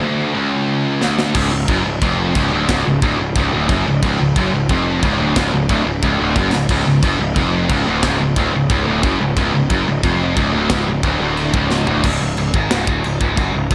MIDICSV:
0, 0, Header, 1, 4, 480
1, 0, Start_track
1, 0, Tempo, 334076
1, 22, Time_signature, 4, 2, 24, 8
1, 19755, End_track
2, 0, Start_track
2, 0, Title_t, "Distorted electric guitar"
2, 0, Program_c, 0, 30
2, 41, Note_on_c, 0, 38, 115
2, 505, Note_off_c, 0, 38, 0
2, 519, Note_on_c, 0, 37, 106
2, 1461, Note_off_c, 0, 37, 0
2, 1467, Note_on_c, 0, 38, 93
2, 1939, Note_off_c, 0, 38, 0
2, 1952, Note_on_c, 0, 37, 103
2, 2165, Note_off_c, 0, 37, 0
2, 2182, Note_on_c, 0, 37, 72
2, 2376, Note_off_c, 0, 37, 0
2, 2424, Note_on_c, 0, 42, 108
2, 2658, Note_off_c, 0, 42, 0
2, 2668, Note_on_c, 0, 37, 78
2, 2860, Note_off_c, 0, 37, 0
2, 2910, Note_on_c, 0, 41, 108
2, 3382, Note_off_c, 0, 41, 0
2, 3388, Note_on_c, 0, 37, 107
2, 3621, Note_off_c, 0, 37, 0
2, 3638, Note_on_c, 0, 38, 114
2, 3862, Note_off_c, 0, 38, 0
2, 3868, Note_on_c, 0, 37, 108
2, 4100, Note_off_c, 0, 37, 0
2, 4119, Note_on_c, 0, 37, 73
2, 4306, Note_off_c, 0, 37, 0
2, 4348, Note_on_c, 0, 38, 113
2, 4581, Note_off_c, 0, 38, 0
2, 4587, Note_on_c, 0, 37, 83
2, 4780, Note_off_c, 0, 37, 0
2, 4831, Note_on_c, 0, 37, 112
2, 5058, Note_off_c, 0, 37, 0
2, 5064, Note_on_c, 0, 38, 107
2, 5296, Note_off_c, 0, 38, 0
2, 5302, Note_on_c, 0, 42, 106
2, 5538, Note_off_c, 0, 42, 0
2, 5561, Note_on_c, 0, 37, 83
2, 5747, Note_off_c, 0, 37, 0
2, 5786, Note_on_c, 0, 37, 110
2, 6016, Note_off_c, 0, 37, 0
2, 6033, Note_on_c, 0, 37, 75
2, 6223, Note_off_c, 0, 37, 0
2, 6265, Note_on_c, 0, 42, 109
2, 6500, Note_off_c, 0, 42, 0
2, 6507, Note_on_c, 0, 37, 77
2, 6700, Note_off_c, 0, 37, 0
2, 6758, Note_on_c, 0, 41, 111
2, 7220, Note_off_c, 0, 41, 0
2, 7225, Note_on_c, 0, 37, 108
2, 7456, Note_off_c, 0, 37, 0
2, 7461, Note_on_c, 0, 38, 116
2, 7699, Note_off_c, 0, 38, 0
2, 7704, Note_on_c, 0, 37, 103
2, 7926, Note_off_c, 0, 37, 0
2, 7944, Note_on_c, 0, 37, 75
2, 8139, Note_off_c, 0, 37, 0
2, 8181, Note_on_c, 0, 38, 110
2, 8418, Note_off_c, 0, 38, 0
2, 8428, Note_on_c, 0, 37, 78
2, 8621, Note_off_c, 0, 37, 0
2, 8672, Note_on_c, 0, 37, 102
2, 8904, Note_off_c, 0, 37, 0
2, 8917, Note_on_c, 0, 38, 102
2, 9146, Note_off_c, 0, 38, 0
2, 9167, Note_on_c, 0, 42, 108
2, 9391, Note_off_c, 0, 42, 0
2, 9401, Note_on_c, 0, 37, 81
2, 9587, Note_off_c, 0, 37, 0
2, 9636, Note_on_c, 0, 37, 107
2, 9859, Note_off_c, 0, 37, 0
2, 9877, Note_on_c, 0, 37, 75
2, 10065, Note_off_c, 0, 37, 0
2, 10112, Note_on_c, 0, 42, 109
2, 10343, Note_off_c, 0, 42, 0
2, 10360, Note_on_c, 0, 37, 69
2, 10547, Note_off_c, 0, 37, 0
2, 10599, Note_on_c, 0, 41, 102
2, 11067, Note_off_c, 0, 41, 0
2, 11084, Note_on_c, 0, 37, 106
2, 11302, Note_off_c, 0, 37, 0
2, 11308, Note_on_c, 0, 38, 108
2, 11541, Note_off_c, 0, 38, 0
2, 11554, Note_on_c, 0, 37, 110
2, 11784, Note_off_c, 0, 37, 0
2, 11799, Note_on_c, 0, 37, 69
2, 11986, Note_off_c, 0, 37, 0
2, 12038, Note_on_c, 0, 38, 105
2, 12266, Note_off_c, 0, 38, 0
2, 12287, Note_on_c, 0, 37, 77
2, 12469, Note_off_c, 0, 37, 0
2, 12506, Note_on_c, 0, 37, 118
2, 12740, Note_off_c, 0, 37, 0
2, 12753, Note_on_c, 0, 38, 104
2, 12983, Note_off_c, 0, 38, 0
2, 12991, Note_on_c, 0, 42, 115
2, 13222, Note_off_c, 0, 42, 0
2, 13242, Note_on_c, 0, 37, 78
2, 13427, Note_off_c, 0, 37, 0
2, 13475, Note_on_c, 0, 37, 112
2, 13690, Note_off_c, 0, 37, 0
2, 13707, Note_on_c, 0, 37, 72
2, 13899, Note_off_c, 0, 37, 0
2, 13936, Note_on_c, 0, 42, 104
2, 14174, Note_off_c, 0, 42, 0
2, 14192, Note_on_c, 0, 37, 80
2, 14381, Note_off_c, 0, 37, 0
2, 14416, Note_on_c, 0, 41, 106
2, 14891, Note_off_c, 0, 41, 0
2, 14897, Note_on_c, 0, 37, 109
2, 15134, Note_off_c, 0, 37, 0
2, 15148, Note_on_c, 0, 38, 106
2, 15379, Note_off_c, 0, 38, 0
2, 15390, Note_on_c, 0, 37, 111
2, 15621, Note_off_c, 0, 37, 0
2, 15641, Note_on_c, 0, 37, 72
2, 15825, Note_off_c, 0, 37, 0
2, 15865, Note_on_c, 0, 38, 112
2, 16087, Note_off_c, 0, 38, 0
2, 16105, Note_on_c, 0, 38, 103
2, 16573, Note_off_c, 0, 38, 0
2, 16579, Note_on_c, 0, 37, 96
2, 17055, Note_off_c, 0, 37, 0
2, 17060, Note_on_c, 0, 38, 112
2, 17294, Note_off_c, 0, 38, 0
2, 17300, Note_on_c, 0, 37, 108
2, 17535, Note_off_c, 0, 37, 0
2, 17551, Note_on_c, 0, 37, 77
2, 17740, Note_off_c, 0, 37, 0
2, 17785, Note_on_c, 0, 37, 78
2, 17976, Note_off_c, 0, 37, 0
2, 18034, Note_on_c, 0, 44, 101
2, 18262, Note_off_c, 0, 44, 0
2, 18269, Note_on_c, 0, 37, 101
2, 18499, Note_off_c, 0, 37, 0
2, 18511, Note_on_c, 0, 38, 99
2, 18740, Note_off_c, 0, 38, 0
2, 18755, Note_on_c, 0, 37, 77
2, 18941, Note_off_c, 0, 37, 0
2, 18986, Note_on_c, 0, 37, 116
2, 19217, Note_off_c, 0, 37, 0
2, 19235, Note_on_c, 0, 42, 112
2, 19454, Note_off_c, 0, 42, 0
2, 19460, Note_on_c, 0, 37, 77
2, 19653, Note_off_c, 0, 37, 0
2, 19708, Note_on_c, 0, 37, 112
2, 19755, Note_off_c, 0, 37, 0
2, 19755, End_track
3, 0, Start_track
3, 0, Title_t, "Picked electric bass"
3, 0, Program_c, 1, 34
3, 1936, Note_on_c, 1, 25, 98
3, 2164, Note_off_c, 1, 25, 0
3, 2199, Note_on_c, 1, 25, 85
3, 2407, Note_off_c, 1, 25, 0
3, 2415, Note_on_c, 1, 30, 101
3, 2644, Note_off_c, 1, 30, 0
3, 2664, Note_on_c, 1, 25, 87
3, 2888, Note_off_c, 1, 25, 0
3, 2895, Note_on_c, 1, 29, 91
3, 3347, Note_off_c, 1, 29, 0
3, 3381, Note_on_c, 1, 25, 100
3, 3607, Note_off_c, 1, 25, 0
3, 3622, Note_on_c, 1, 26, 101
3, 3848, Note_off_c, 1, 26, 0
3, 3861, Note_on_c, 1, 25, 106
3, 4088, Note_off_c, 1, 25, 0
3, 4115, Note_on_c, 1, 25, 84
3, 4329, Note_off_c, 1, 25, 0
3, 4338, Note_on_c, 1, 26, 104
3, 4566, Note_off_c, 1, 26, 0
3, 4591, Note_on_c, 1, 25, 77
3, 4810, Note_off_c, 1, 25, 0
3, 4819, Note_on_c, 1, 25, 96
3, 5047, Note_off_c, 1, 25, 0
3, 5074, Note_on_c, 1, 26, 101
3, 5291, Note_off_c, 1, 26, 0
3, 5300, Note_on_c, 1, 30, 94
3, 5527, Note_off_c, 1, 30, 0
3, 5559, Note_on_c, 1, 25, 91
3, 5778, Note_off_c, 1, 25, 0
3, 5790, Note_on_c, 1, 25, 98
3, 6013, Note_off_c, 1, 25, 0
3, 6047, Note_on_c, 1, 25, 89
3, 6255, Note_off_c, 1, 25, 0
3, 6263, Note_on_c, 1, 30, 107
3, 6489, Note_off_c, 1, 30, 0
3, 6518, Note_on_c, 1, 25, 78
3, 6737, Note_off_c, 1, 25, 0
3, 6745, Note_on_c, 1, 29, 87
3, 7194, Note_off_c, 1, 29, 0
3, 7224, Note_on_c, 1, 25, 97
3, 7450, Note_off_c, 1, 25, 0
3, 7464, Note_on_c, 1, 26, 105
3, 7690, Note_off_c, 1, 26, 0
3, 7702, Note_on_c, 1, 25, 106
3, 7929, Note_off_c, 1, 25, 0
3, 7942, Note_on_c, 1, 25, 80
3, 8169, Note_off_c, 1, 25, 0
3, 8178, Note_on_c, 1, 26, 102
3, 8407, Note_off_c, 1, 26, 0
3, 8425, Note_on_c, 1, 25, 87
3, 8650, Note_off_c, 1, 25, 0
3, 8660, Note_on_c, 1, 25, 91
3, 8888, Note_off_c, 1, 25, 0
3, 8909, Note_on_c, 1, 26, 93
3, 9124, Note_off_c, 1, 26, 0
3, 9133, Note_on_c, 1, 30, 92
3, 9364, Note_off_c, 1, 30, 0
3, 9388, Note_on_c, 1, 25, 81
3, 9603, Note_off_c, 1, 25, 0
3, 9612, Note_on_c, 1, 25, 99
3, 9844, Note_off_c, 1, 25, 0
3, 9870, Note_on_c, 1, 25, 92
3, 10084, Note_off_c, 1, 25, 0
3, 10093, Note_on_c, 1, 30, 92
3, 10324, Note_off_c, 1, 30, 0
3, 10336, Note_on_c, 1, 25, 80
3, 10566, Note_off_c, 1, 25, 0
3, 10576, Note_on_c, 1, 29, 99
3, 11029, Note_off_c, 1, 29, 0
3, 11059, Note_on_c, 1, 25, 97
3, 11287, Note_off_c, 1, 25, 0
3, 11313, Note_on_c, 1, 26, 102
3, 11530, Note_off_c, 1, 26, 0
3, 11539, Note_on_c, 1, 25, 96
3, 11767, Note_off_c, 1, 25, 0
3, 11785, Note_on_c, 1, 25, 86
3, 12010, Note_off_c, 1, 25, 0
3, 12018, Note_on_c, 1, 26, 99
3, 12246, Note_off_c, 1, 26, 0
3, 12268, Note_on_c, 1, 25, 88
3, 12486, Note_off_c, 1, 25, 0
3, 12495, Note_on_c, 1, 25, 99
3, 12724, Note_off_c, 1, 25, 0
3, 12753, Note_on_c, 1, 26, 108
3, 12969, Note_off_c, 1, 26, 0
3, 12978, Note_on_c, 1, 30, 94
3, 13205, Note_off_c, 1, 30, 0
3, 13228, Note_on_c, 1, 25, 94
3, 13451, Note_off_c, 1, 25, 0
3, 13458, Note_on_c, 1, 25, 95
3, 13686, Note_off_c, 1, 25, 0
3, 13709, Note_on_c, 1, 25, 84
3, 13931, Note_off_c, 1, 25, 0
3, 13939, Note_on_c, 1, 30, 98
3, 14166, Note_off_c, 1, 30, 0
3, 14190, Note_on_c, 1, 25, 87
3, 14412, Note_off_c, 1, 25, 0
3, 14420, Note_on_c, 1, 29, 86
3, 14869, Note_off_c, 1, 29, 0
3, 14896, Note_on_c, 1, 25, 100
3, 15124, Note_off_c, 1, 25, 0
3, 15136, Note_on_c, 1, 26, 99
3, 15364, Note_off_c, 1, 26, 0
3, 15375, Note_on_c, 1, 25, 106
3, 15603, Note_off_c, 1, 25, 0
3, 15622, Note_on_c, 1, 25, 84
3, 15847, Note_off_c, 1, 25, 0
3, 15854, Note_on_c, 1, 26, 98
3, 16077, Note_off_c, 1, 26, 0
3, 16085, Note_on_c, 1, 26, 95
3, 16541, Note_off_c, 1, 26, 0
3, 16572, Note_on_c, 1, 25, 92
3, 17024, Note_off_c, 1, 25, 0
3, 17055, Note_on_c, 1, 26, 103
3, 17283, Note_off_c, 1, 26, 0
3, 17293, Note_on_c, 1, 25, 102
3, 17522, Note_off_c, 1, 25, 0
3, 17549, Note_on_c, 1, 25, 86
3, 17770, Note_off_c, 1, 25, 0
3, 17782, Note_on_c, 1, 25, 87
3, 18006, Note_off_c, 1, 25, 0
3, 18014, Note_on_c, 1, 32, 87
3, 18241, Note_off_c, 1, 32, 0
3, 18269, Note_on_c, 1, 25, 92
3, 18490, Note_off_c, 1, 25, 0
3, 18496, Note_on_c, 1, 26, 99
3, 18723, Note_off_c, 1, 26, 0
3, 18754, Note_on_c, 1, 25, 81
3, 18966, Note_off_c, 1, 25, 0
3, 18974, Note_on_c, 1, 25, 97
3, 19201, Note_off_c, 1, 25, 0
3, 19212, Note_on_c, 1, 30, 103
3, 19440, Note_off_c, 1, 30, 0
3, 19456, Note_on_c, 1, 25, 89
3, 19682, Note_off_c, 1, 25, 0
3, 19692, Note_on_c, 1, 25, 97
3, 19755, Note_off_c, 1, 25, 0
3, 19755, End_track
4, 0, Start_track
4, 0, Title_t, "Drums"
4, 1459, Note_on_c, 9, 38, 67
4, 1602, Note_off_c, 9, 38, 0
4, 1703, Note_on_c, 9, 38, 89
4, 1847, Note_off_c, 9, 38, 0
4, 1934, Note_on_c, 9, 49, 127
4, 1934, Note_on_c, 9, 57, 71
4, 1937, Note_on_c, 9, 36, 123
4, 2077, Note_off_c, 9, 49, 0
4, 2077, Note_off_c, 9, 57, 0
4, 2081, Note_off_c, 9, 36, 0
4, 2413, Note_on_c, 9, 57, 79
4, 2416, Note_on_c, 9, 36, 126
4, 2556, Note_off_c, 9, 57, 0
4, 2560, Note_off_c, 9, 36, 0
4, 2897, Note_on_c, 9, 57, 68
4, 2898, Note_on_c, 9, 36, 111
4, 3041, Note_off_c, 9, 57, 0
4, 3042, Note_off_c, 9, 36, 0
4, 3381, Note_on_c, 9, 36, 112
4, 3383, Note_on_c, 9, 57, 71
4, 3524, Note_off_c, 9, 36, 0
4, 3527, Note_off_c, 9, 57, 0
4, 3862, Note_on_c, 9, 36, 122
4, 3865, Note_on_c, 9, 57, 66
4, 3868, Note_on_c, 9, 38, 124
4, 4006, Note_off_c, 9, 36, 0
4, 4009, Note_off_c, 9, 57, 0
4, 4011, Note_off_c, 9, 38, 0
4, 4342, Note_on_c, 9, 36, 118
4, 4343, Note_on_c, 9, 57, 70
4, 4486, Note_off_c, 9, 36, 0
4, 4487, Note_off_c, 9, 57, 0
4, 4822, Note_on_c, 9, 36, 120
4, 4823, Note_on_c, 9, 57, 63
4, 4966, Note_off_c, 9, 36, 0
4, 4967, Note_off_c, 9, 57, 0
4, 5300, Note_on_c, 9, 57, 73
4, 5303, Note_on_c, 9, 36, 118
4, 5443, Note_off_c, 9, 57, 0
4, 5447, Note_off_c, 9, 36, 0
4, 5786, Note_on_c, 9, 36, 121
4, 5787, Note_on_c, 9, 57, 73
4, 5929, Note_off_c, 9, 36, 0
4, 5931, Note_off_c, 9, 57, 0
4, 6265, Note_on_c, 9, 36, 124
4, 6265, Note_on_c, 9, 57, 74
4, 6409, Note_off_c, 9, 36, 0
4, 6409, Note_off_c, 9, 57, 0
4, 6739, Note_on_c, 9, 57, 70
4, 6744, Note_on_c, 9, 36, 112
4, 6883, Note_off_c, 9, 57, 0
4, 6888, Note_off_c, 9, 36, 0
4, 7220, Note_on_c, 9, 57, 69
4, 7225, Note_on_c, 9, 36, 112
4, 7364, Note_off_c, 9, 57, 0
4, 7368, Note_off_c, 9, 36, 0
4, 7702, Note_on_c, 9, 57, 71
4, 7703, Note_on_c, 9, 36, 112
4, 7705, Note_on_c, 9, 38, 122
4, 7846, Note_off_c, 9, 57, 0
4, 7847, Note_off_c, 9, 36, 0
4, 7849, Note_off_c, 9, 38, 0
4, 8178, Note_on_c, 9, 57, 70
4, 8180, Note_on_c, 9, 36, 112
4, 8321, Note_off_c, 9, 57, 0
4, 8324, Note_off_c, 9, 36, 0
4, 8658, Note_on_c, 9, 57, 62
4, 8659, Note_on_c, 9, 36, 113
4, 8801, Note_off_c, 9, 57, 0
4, 8803, Note_off_c, 9, 36, 0
4, 9131, Note_on_c, 9, 57, 70
4, 9136, Note_on_c, 9, 36, 115
4, 9274, Note_off_c, 9, 57, 0
4, 9280, Note_off_c, 9, 36, 0
4, 9378, Note_on_c, 9, 38, 63
4, 9521, Note_off_c, 9, 38, 0
4, 9612, Note_on_c, 9, 55, 90
4, 9612, Note_on_c, 9, 57, 65
4, 9614, Note_on_c, 9, 36, 115
4, 9756, Note_off_c, 9, 55, 0
4, 9756, Note_off_c, 9, 57, 0
4, 9758, Note_off_c, 9, 36, 0
4, 10096, Note_on_c, 9, 57, 78
4, 10097, Note_on_c, 9, 36, 120
4, 10240, Note_off_c, 9, 36, 0
4, 10240, Note_off_c, 9, 57, 0
4, 10575, Note_on_c, 9, 36, 109
4, 10575, Note_on_c, 9, 57, 69
4, 10719, Note_off_c, 9, 36, 0
4, 10719, Note_off_c, 9, 57, 0
4, 11056, Note_on_c, 9, 57, 79
4, 11057, Note_on_c, 9, 36, 119
4, 11200, Note_off_c, 9, 57, 0
4, 11201, Note_off_c, 9, 36, 0
4, 11533, Note_on_c, 9, 57, 74
4, 11536, Note_on_c, 9, 38, 123
4, 11537, Note_on_c, 9, 36, 112
4, 11677, Note_off_c, 9, 57, 0
4, 11679, Note_off_c, 9, 38, 0
4, 11681, Note_off_c, 9, 36, 0
4, 12016, Note_on_c, 9, 57, 67
4, 12017, Note_on_c, 9, 36, 121
4, 12160, Note_off_c, 9, 36, 0
4, 12160, Note_off_c, 9, 57, 0
4, 12492, Note_on_c, 9, 57, 70
4, 12498, Note_on_c, 9, 36, 121
4, 12636, Note_off_c, 9, 57, 0
4, 12641, Note_off_c, 9, 36, 0
4, 12979, Note_on_c, 9, 36, 118
4, 12981, Note_on_c, 9, 57, 67
4, 13123, Note_off_c, 9, 36, 0
4, 13125, Note_off_c, 9, 57, 0
4, 13456, Note_on_c, 9, 57, 66
4, 13458, Note_on_c, 9, 36, 112
4, 13600, Note_off_c, 9, 57, 0
4, 13602, Note_off_c, 9, 36, 0
4, 13938, Note_on_c, 9, 36, 127
4, 13939, Note_on_c, 9, 57, 70
4, 14082, Note_off_c, 9, 36, 0
4, 14082, Note_off_c, 9, 57, 0
4, 14418, Note_on_c, 9, 36, 114
4, 14419, Note_on_c, 9, 57, 71
4, 14562, Note_off_c, 9, 36, 0
4, 14562, Note_off_c, 9, 57, 0
4, 14896, Note_on_c, 9, 36, 122
4, 14901, Note_on_c, 9, 57, 69
4, 15040, Note_off_c, 9, 36, 0
4, 15045, Note_off_c, 9, 57, 0
4, 15367, Note_on_c, 9, 57, 68
4, 15370, Note_on_c, 9, 38, 127
4, 15373, Note_on_c, 9, 36, 115
4, 15511, Note_off_c, 9, 57, 0
4, 15514, Note_off_c, 9, 38, 0
4, 15517, Note_off_c, 9, 36, 0
4, 15849, Note_on_c, 9, 57, 76
4, 15853, Note_on_c, 9, 36, 127
4, 15993, Note_off_c, 9, 57, 0
4, 15996, Note_off_c, 9, 36, 0
4, 16337, Note_on_c, 9, 57, 64
4, 16480, Note_off_c, 9, 57, 0
4, 16576, Note_on_c, 9, 36, 109
4, 16720, Note_off_c, 9, 36, 0
4, 16819, Note_on_c, 9, 38, 73
4, 16963, Note_off_c, 9, 38, 0
4, 17056, Note_on_c, 9, 43, 92
4, 17200, Note_off_c, 9, 43, 0
4, 17296, Note_on_c, 9, 36, 113
4, 17297, Note_on_c, 9, 49, 127
4, 17297, Note_on_c, 9, 52, 66
4, 17439, Note_off_c, 9, 36, 0
4, 17441, Note_off_c, 9, 49, 0
4, 17441, Note_off_c, 9, 52, 0
4, 17774, Note_on_c, 9, 52, 74
4, 17918, Note_off_c, 9, 52, 0
4, 18015, Note_on_c, 9, 36, 107
4, 18159, Note_off_c, 9, 36, 0
4, 18257, Note_on_c, 9, 52, 74
4, 18259, Note_on_c, 9, 38, 124
4, 18400, Note_off_c, 9, 52, 0
4, 18403, Note_off_c, 9, 38, 0
4, 18497, Note_on_c, 9, 36, 111
4, 18641, Note_off_c, 9, 36, 0
4, 18736, Note_on_c, 9, 52, 71
4, 18880, Note_off_c, 9, 52, 0
4, 18976, Note_on_c, 9, 36, 110
4, 19119, Note_off_c, 9, 36, 0
4, 19212, Note_on_c, 9, 52, 69
4, 19216, Note_on_c, 9, 36, 117
4, 19356, Note_off_c, 9, 52, 0
4, 19359, Note_off_c, 9, 36, 0
4, 19693, Note_on_c, 9, 52, 76
4, 19695, Note_on_c, 9, 36, 127
4, 19755, Note_off_c, 9, 36, 0
4, 19755, Note_off_c, 9, 52, 0
4, 19755, End_track
0, 0, End_of_file